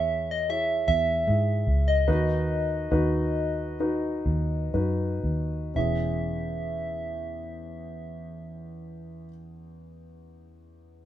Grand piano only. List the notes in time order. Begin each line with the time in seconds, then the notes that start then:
Already playing: E3 E4 G#4 C#5
0.49 E4 G#4 C#5
1.27 E4 G#4 E5
2.07 D#3 D#4 F#4 B4
2.91 D#4 F#4 B4
3.80 D#4 F#4 B4
4.74 D#4 F#4 B4
5.74 E2 C#4 E4 G#4